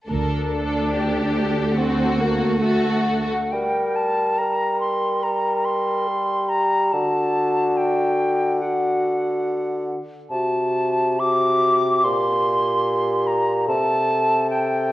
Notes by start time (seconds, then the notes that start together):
0.08 D2 D4 A4 A#4
0.52 A4
0.94 G4
1.76 C4 F#4
2.17 A#3
2.61 A3 F#4 A4
3.07 F#5
3.52 G3 A#4 G5
3.96 A5
4.38 A#4 A#5
4.80 C6
5.23 A#4 A#5
5.65 C6
6.08 G4
6.49 A#5
6.93 D3 F#4 A5
7.77 G5
8.60 F#4 F#5
10.30 C3 F#4 A5
11.19 F#4 D6
12.03 A#2 G4 C6
13.27 A#5
13.68 C3 A4 A5
14.50 G5